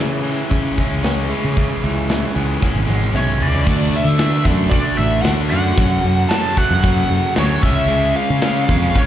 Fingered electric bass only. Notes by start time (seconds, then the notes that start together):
0.00 C#3
0.52 C#3
0.92 C#2
1.44 C#3
1.84 C#2
2.36 C#2
2.74 G#1
2.88 G#1
3.13 B1
3.40 C#2
3.67 D2
4.05 D3
4.45 F#2
4.99 A1
5.24 D2
5.52 F#2
5.77 F#2
6.04 F#2
6.70 F#2
7.10 F#2
7.37 D2
7.63 C#2
8.30 C#3
8.69 F2